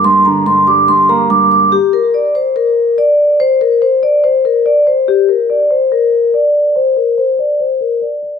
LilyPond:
<<
  \new Staff \with { instrumentName = "Vibraphone" } { \time 4/4 \key g \minor \tempo 4 = 143 c'''8 bes''8 c'''8 d'''8 c'''8 bes''8 d'''8 d'''8 | g'8 bes'8 d''8 c''8 bes'4 d''4 | c''8 bes'8 c''8 d''8 c''8 bes'8 d''8 c''8 | g'8 bes'8 d''8 c''8 bes'4 d''4 |
c''8 bes'8 c''8 d''8 c''8 bes'8 d''8 r8 | }
  \new Staff \with { instrumentName = "Grand piano" } { \clef bass \time 4/4 \key g \minor <g, bes>8 d8 g,8 g8 g,8 bes8 g,4 | r1 | r1 | r1 |
r1 | }
>>